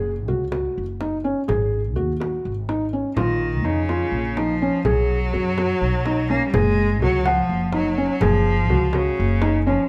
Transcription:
Already playing: F#1 G#4
0.28 C#2 F#4, frame drum
0.52 F#4, frame drum
0.78 F#1
1.01 D#4, frame drum
1.24 C#4
1.48 G#1 G#4, frame drum
1.74 frame drum
1.96 D#2 F#4, frame drum
2.20 F#4, frame drum
2.45 G#1
2.69 D#4, frame drum
2.93 C#4
3.15 A#1 D#3 F4, frame drum
3.64 F2 C#3 D#4, frame drum
3.89 F4, frame drum
4.12 A#1
4.36 F3 D#4, frame drum
4.62 C#4
4.85 B1 F#3 G#4, frame drum
5.33 F#2 F#4, frame drum
5.58 F#4, frame drum
5.81 B1
6.06 D#4, frame drum
6.30 A#3 C#4
6.47 G3
6.53 F#1 G#3 G#4, frame drum
7.01 C#2 F#3 F#4, frame drum
7.25 F3 F#5, frame drum
7.49 F#1
7.73 F#3 D#4, frame drum
7.98 C#4
8.21 F#1 F3 G#4, frame drum
8.69 C#2 F#4, frame drum
8.93 C#3 F#4, frame drum
9.17 F#1, frame drum
9.42 D#4, frame drum
9.65 F3 C#4

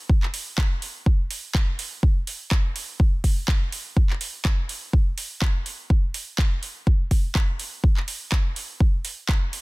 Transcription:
0.10 kick
0.23 clap
0.34 open hi-hat
0.58 kick, clap
0.82 open hi-hat
1.06 kick
1.31 open hi-hat
1.55 kick, clap
1.79 open hi-hat
2.03 kick
2.27 open hi-hat
2.51 kick, clap
2.76 open hi-hat
3.00 kick
3.24 kick, open hi-hat
3.48 kick, clap
3.72 open hi-hat
3.97 kick
4.10 clap
4.21 open hi-hat
4.45 kick, clap
4.69 open hi-hat
4.93 kick
5.18 open hi-hat
5.42 kick, clap
5.66 open hi-hat
5.90 kick
6.14 open hi-hat
6.39 kick, clap
6.63 open hi-hat
6.87 kick
7.11 kick, open hi-hat
7.35 kick, clap
7.59 open hi-hat
7.84 kick
7.97 clap
8.08 open hi-hat
8.32 kick, clap
8.56 open hi-hat
8.80 kick
9.05 open hi-hat
9.29 kick, clap
9.53 open hi-hat

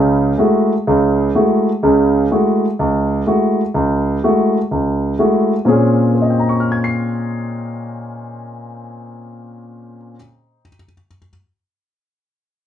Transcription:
Already playing: C#2 C#3
0.38 G#3 A3 E4 F#4
0.87 C#2 C#3
1.35 G#3 A3 E4 F#4
1.83 C#2 C#3
2.31 G#3 A3 E4 F#4
2.79 C#2
3.27 G#3 A3 E4 F#4
3.74 C#2
4.24 G#3 A3 E4 F#4
4.71 C#2
5.19 G#3 A3 E4 F#4
5.65 A#2 A#3 C4 C#4 G#4
6.15 C5
6.22 D#5
6.30 G5
6.39 A#5
6.49 C#6
6.60 F6
6.72 G#6
6.84 C7

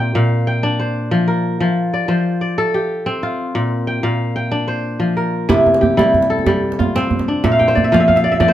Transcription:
Already playing: A#2 C4 F4 G4
0.00 G5
0.15 A#2 F5
0.47 G5
0.63 D4
0.80 C5
1.11 F3
1.28 A#4
1.60 F3
1.94 D5
2.08 F3 C5
2.41 D5
2.58 A4
2.74 G4
3.06 C4
3.23 F4
3.55 A#2
3.87 G5
4.03 A#2 F5
4.36 G5
4.51 D4
4.68 C5
5.00 F3
5.17 A#4
5.49 C3 E4, djembe slap, djembe bass
5.66 djembe tone
5.74 djembe slap
5.81 G4, djembe bass
5.97 G3 E4, djembe slap, djembe tone
6.06 djembe slap
6.14 djembe slap, djembe bass
6.22 djembe slap
6.30 A4, djembe slap
6.39 djembe slap, djembe tone
6.46 G3, djembe slap, djembe bass
6.72 djembe slap
6.79 F4, djembe tone, djembe bass
6.96 C4, djembe slap
7.04 djembe slap
7.11 djembe bass
7.19 djembe slap, djembe tone
7.28 D4
7.44 A#2 E5, djembe slap, djembe bass
7.52 F5
7.59 G5, djembe tone
7.68 C5, djembe slap
7.75 D5, djembe bass
7.84 E5
7.92 F3 F5, djembe slap, djembe tone
8.00 E5, djembe slap
8.08 F5, djembe slap, djembe bass
8.16 E5, djembe slap
8.24 D5, djembe slap
8.32 E5, djembe slap, djembe tone
8.40 F3 D5, djembe slap, djembe bass
8.48 C5

